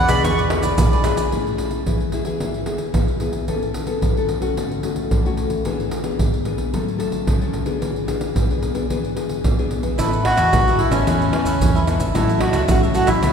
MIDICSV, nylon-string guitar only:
0, 0, Header, 1, 2, 480
1, 0, Start_track
1, 0, Key_signature, 3, "major"
1, 0, Tempo, 541028
1, 1173, Time_signature, 4, 2, 24, 8
1, 11824, End_track
2, 0, Start_track
2, 0, Title_t, "Nylon-string guitar"
2, 0, Program_c, 0, 24
2, 0, Note_on_c, 0, 47, 56
2, 75, Note_on_c, 0, 59, 69
2, 79, Note_on_c, 0, 62, 63
2, 81, Note_on_c, 0, 68, 69
2, 190, Note_off_c, 0, 47, 0
2, 213, Note_on_c, 0, 52, 57
2, 406, Note_off_c, 0, 59, 0
2, 407, Note_off_c, 0, 62, 0
2, 409, Note_off_c, 0, 68, 0
2, 445, Note_on_c, 0, 59, 58
2, 450, Note_on_c, 0, 68, 69
2, 452, Note_on_c, 0, 62, 59
2, 669, Note_off_c, 0, 52, 0
2, 891, Note_off_c, 0, 59, 0
2, 892, Note_off_c, 0, 62, 0
2, 893, Note_off_c, 0, 68, 0
2, 920, Note_on_c, 0, 59, 58
2, 926, Note_on_c, 0, 62, 62
2, 933, Note_on_c, 0, 68, 63
2, 1128, Note_off_c, 0, 59, 0
2, 1131, Note_off_c, 0, 62, 0
2, 1134, Note_off_c, 0, 68, 0
2, 1170, Note_on_c, 0, 57, 51
2, 1173, Note_on_c, 0, 61, 43
2, 1177, Note_on_c, 0, 64, 45
2, 1181, Note_on_c, 0, 68, 46
2, 1613, Note_off_c, 0, 61, 0
2, 1617, Note_off_c, 0, 64, 0
2, 1618, Note_off_c, 0, 68, 0
2, 1628, Note_off_c, 0, 57, 0
2, 1658, Note_on_c, 0, 52, 54
2, 1661, Note_on_c, 0, 61, 45
2, 1662, Note_on_c, 0, 64, 45
2, 1667, Note_on_c, 0, 68, 46
2, 1858, Note_off_c, 0, 61, 0
2, 1859, Note_off_c, 0, 64, 0
2, 1861, Note_off_c, 0, 68, 0
2, 1888, Note_on_c, 0, 61, 47
2, 1896, Note_on_c, 0, 64, 53
2, 1899, Note_on_c, 0, 68, 49
2, 1962, Note_off_c, 0, 61, 0
2, 1967, Note_off_c, 0, 64, 0
2, 1968, Note_off_c, 0, 68, 0
2, 2002, Note_on_c, 0, 59, 52
2, 2008, Note_on_c, 0, 64, 53
2, 2011, Note_on_c, 0, 68, 55
2, 2112, Note_off_c, 0, 52, 0
2, 2134, Note_on_c, 0, 52, 57
2, 2329, Note_off_c, 0, 59, 0
2, 2332, Note_off_c, 0, 64, 0
2, 2334, Note_off_c, 0, 68, 0
2, 2362, Note_on_c, 0, 59, 39
2, 2365, Note_on_c, 0, 64, 45
2, 2371, Note_on_c, 0, 68, 54
2, 2590, Note_off_c, 0, 52, 0
2, 2615, Note_on_c, 0, 47, 56
2, 2810, Note_off_c, 0, 59, 0
2, 2812, Note_off_c, 0, 64, 0
2, 2813, Note_off_c, 0, 68, 0
2, 2838, Note_on_c, 0, 59, 45
2, 2844, Note_on_c, 0, 64, 46
2, 2846, Note_on_c, 0, 68, 52
2, 3049, Note_off_c, 0, 59, 0
2, 3049, Note_off_c, 0, 64, 0
2, 3052, Note_off_c, 0, 68, 0
2, 3071, Note_off_c, 0, 47, 0
2, 3090, Note_on_c, 0, 59, 45
2, 3093, Note_on_c, 0, 52, 54
2, 3098, Note_on_c, 0, 61, 46
2, 3100, Note_on_c, 0, 69, 51
2, 3414, Note_off_c, 0, 59, 0
2, 3417, Note_off_c, 0, 61, 0
2, 3419, Note_off_c, 0, 69, 0
2, 3431, Note_on_c, 0, 59, 57
2, 3436, Note_on_c, 0, 61, 52
2, 3438, Note_on_c, 0, 69, 53
2, 3550, Note_off_c, 0, 52, 0
2, 3574, Note_on_c, 0, 52, 55
2, 3645, Note_off_c, 0, 59, 0
2, 3647, Note_off_c, 0, 61, 0
2, 3647, Note_off_c, 0, 69, 0
2, 3700, Note_on_c, 0, 59, 48
2, 3705, Note_on_c, 0, 61, 43
2, 3709, Note_on_c, 0, 69, 54
2, 3899, Note_off_c, 0, 59, 0
2, 3902, Note_off_c, 0, 61, 0
2, 3903, Note_off_c, 0, 69, 0
2, 3913, Note_on_c, 0, 57, 53
2, 3920, Note_on_c, 0, 61, 58
2, 3922, Note_on_c, 0, 66, 60
2, 4031, Note_off_c, 0, 52, 0
2, 4059, Note_on_c, 0, 50, 62
2, 4246, Note_off_c, 0, 57, 0
2, 4250, Note_off_c, 0, 61, 0
2, 4250, Note_off_c, 0, 66, 0
2, 4289, Note_on_c, 0, 57, 48
2, 4297, Note_on_c, 0, 61, 44
2, 4301, Note_on_c, 0, 66, 50
2, 4514, Note_off_c, 0, 50, 0
2, 4518, Note_off_c, 0, 57, 0
2, 4522, Note_off_c, 0, 61, 0
2, 4524, Note_off_c, 0, 66, 0
2, 4535, Note_on_c, 0, 45, 59
2, 4659, Note_on_c, 0, 57, 52
2, 4665, Note_on_c, 0, 61, 58
2, 4670, Note_on_c, 0, 66, 59
2, 4980, Note_off_c, 0, 57, 0
2, 4983, Note_off_c, 0, 61, 0
2, 4984, Note_off_c, 0, 66, 0
2, 4992, Note_off_c, 0, 45, 0
2, 5015, Note_on_c, 0, 52, 60
2, 5019, Note_on_c, 0, 59, 46
2, 5024, Note_on_c, 0, 62, 46
2, 5024, Note_on_c, 0, 68, 50
2, 5242, Note_off_c, 0, 59, 0
2, 5245, Note_off_c, 0, 68, 0
2, 5246, Note_off_c, 0, 62, 0
2, 5357, Note_on_c, 0, 59, 54
2, 5360, Note_on_c, 0, 62, 56
2, 5365, Note_on_c, 0, 68, 54
2, 5473, Note_off_c, 0, 52, 0
2, 5499, Note_on_c, 0, 47, 54
2, 5689, Note_off_c, 0, 59, 0
2, 5691, Note_off_c, 0, 62, 0
2, 5692, Note_off_c, 0, 68, 0
2, 5727, Note_on_c, 0, 59, 50
2, 5732, Note_on_c, 0, 62, 51
2, 5732, Note_on_c, 0, 68, 57
2, 5934, Note_off_c, 0, 59, 0
2, 5935, Note_off_c, 0, 62, 0
2, 5937, Note_off_c, 0, 68, 0
2, 5955, Note_off_c, 0, 47, 0
2, 5969, Note_on_c, 0, 54, 59
2, 5971, Note_on_c, 0, 57, 45
2, 5974, Note_on_c, 0, 61, 45
2, 5977, Note_on_c, 0, 69, 48
2, 6175, Note_off_c, 0, 57, 0
2, 6178, Note_off_c, 0, 61, 0
2, 6178, Note_off_c, 0, 69, 0
2, 6193, Note_on_c, 0, 57, 49
2, 6197, Note_on_c, 0, 61, 44
2, 6199, Note_on_c, 0, 69, 49
2, 6431, Note_off_c, 0, 54, 0
2, 6445, Note_on_c, 0, 49, 63
2, 6527, Note_off_c, 0, 57, 0
2, 6530, Note_off_c, 0, 61, 0
2, 6530, Note_off_c, 0, 69, 0
2, 6575, Note_on_c, 0, 57, 52
2, 6580, Note_on_c, 0, 61, 53
2, 6584, Note_on_c, 0, 69, 59
2, 6778, Note_off_c, 0, 57, 0
2, 6781, Note_off_c, 0, 61, 0
2, 6783, Note_off_c, 0, 69, 0
2, 6791, Note_on_c, 0, 59, 49
2, 6794, Note_on_c, 0, 62, 52
2, 6798, Note_on_c, 0, 68, 53
2, 6908, Note_off_c, 0, 49, 0
2, 6927, Note_on_c, 0, 52, 53
2, 7148, Note_off_c, 0, 59, 0
2, 7151, Note_off_c, 0, 62, 0
2, 7158, Note_on_c, 0, 59, 45
2, 7159, Note_off_c, 0, 68, 0
2, 7163, Note_on_c, 0, 62, 46
2, 7169, Note_on_c, 0, 68, 49
2, 7389, Note_off_c, 0, 52, 0
2, 7410, Note_on_c, 0, 47, 50
2, 7490, Note_off_c, 0, 59, 0
2, 7492, Note_off_c, 0, 62, 0
2, 7496, Note_off_c, 0, 68, 0
2, 7535, Note_on_c, 0, 59, 46
2, 7540, Note_on_c, 0, 62, 48
2, 7543, Note_on_c, 0, 68, 52
2, 7739, Note_off_c, 0, 59, 0
2, 7740, Note_off_c, 0, 62, 0
2, 7743, Note_off_c, 0, 68, 0
2, 7756, Note_on_c, 0, 59, 54
2, 7761, Note_on_c, 0, 62, 56
2, 7766, Note_on_c, 0, 68, 59
2, 7849, Note_off_c, 0, 59, 0
2, 7852, Note_off_c, 0, 62, 0
2, 7853, Note_off_c, 0, 68, 0
2, 7870, Note_off_c, 0, 47, 0
2, 7891, Note_on_c, 0, 52, 54
2, 7894, Note_on_c, 0, 59, 48
2, 7900, Note_on_c, 0, 62, 53
2, 7904, Note_on_c, 0, 68, 49
2, 8097, Note_off_c, 0, 59, 0
2, 8099, Note_off_c, 0, 62, 0
2, 8103, Note_off_c, 0, 68, 0
2, 8127, Note_on_c, 0, 59, 40
2, 8132, Note_on_c, 0, 62, 49
2, 8132, Note_on_c, 0, 68, 51
2, 8351, Note_off_c, 0, 52, 0
2, 8358, Note_off_c, 0, 59, 0
2, 8359, Note_off_c, 0, 62, 0
2, 8360, Note_off_c, 0, 68, 0
2, 8380, Note_on_c, 0, 47, 58
2, 8502, Note_on_c, 0, 59, 56
2, 8507, Note_on_c, 0, 62, 53
2, 8511, Note_on_c, 0, 68, 58
2, 8702, Note_off_c, 0, 59, 0
2, 8704, Note_off_c, 0, 62, 0
2, 8706, Note_off_c, 0, 68, 0
2, 8719, Note_on_c, 0, 52, 53
2, 8726, Note_on_c, 0, 59, 56
2, 8727, Note_on_c, 0, 64, 59
2, 8835, Note_off_c, 0, 47, 0
2, 8856, Note_on_c, 0, 45, 51
2, 9050, Note_off_c, 0, 52, 0
2, 9052, Note_off_c, 0, 59, 0
2, 9054, Note_off_c, 0, 64, 0
2, 9312, Note_off_c, 0, 45, 0
2, 9337, Note_on_c, 0, 52, 46
2, 9338, Note_off_c, 0, 52, 0
2, 9338, Note_on_c, 0, 52, 51
2, 9345, Note_on_c, 0, 59, 48
2, 9345, Note_on_c, 0, 64, 53
2, 9356, Note_off_c, 0, 52, 0
2, 9563, Note_off_c, 0, 59, 0
2, 9566, Note_off_c, 0, 64, 0
2, 9677, Note_on_c, 0, 52, 61
2, 9683, Note_on_c, 0, 59, 61
2, 9684, Note_on_c, 0, 64, 61
2, 9809, Note_on_c, 0, 45, 52
2, 10009, Note_off_c, 0, 52, 0
2, 10010, Note_off_c, 0, 59, 0
2, 10012, Note_off_c, 0, 64, 0
2, 10042, Note_on_c, 0, 52, 55
2, 10049, Note_on_c, 0, 59, 51
2, 10050, Note_on_c, 0, 64, 60
2, 10268, Note_off_c, 0, 45, 0
2, 10284, Note_off_c, 0, 52, 0
2, 10294, Note_on_c, 0, 52, 51
2, 10492, Note_off_c, 0, 59, 0
2, 10494, Note_off_c, 0, 64, 0
2, 10513, Note_off_c, 0, 52, 0
2, 10524, Note_on_c, 0, 52, 56
2, 10527, Note_on_c, 0, 59, 50
2, 10533, Note_on_c, 0, 64, 58
2, 10670, Note_off_c, 0, 52, 0
2, 10672, Note_off_c, 0, 59, 0
2, 10674, Note_off_c, 0, 64, 0
2, 10768, Note_on_c, 0, 45, 50
2, 10770, Note_on_c, 0, 54, 55
2, 10773, Note_on_c, 0, 61, 53
2, 10773, Note_on_c, 0, 64, 58
2, 11081, Note_off_c, 0, 54, 0
2, 11081, Note_off_c, 0, 61, 0
2, 11082, Note_off_c, 0, 64, 0
2, 11227, Note_off_c, 0, 45, 0
2, 11247, Note_on_c, 0, 45, 51
2, 11251, Note_on_c, 0, 54, 48
2, 11256, Note_on_c, 0, 61, 52
2, 11261, Note_on_c, 0, 64, 49
2, 11573, Note_off_c, 0, 54, 0
2, 11574, Note_off_c, 0, 61, 0
2, 11574, Note_off_c, 0, 64, 0
2, 11587, Note_on_c, 0, 54, 56
2, 11594, Note_on_c, 0, 61, 59
2, 11600, Note_on_c, 0, 64, 65
2, 11707, Note_off_c, 0, 45, 0
2, 11726, Note_on_c, 0, 45, 52
2, 11824, Note_off_c, 0, 45, 0
2, 11824, Note_off_c, 0, 54, 0
2, 11824, Note_off_c, 0, 61, 0
2, 11824, Note_off_c, 0, 64, 0
2, 11824, End_track
0, 0, End_of_file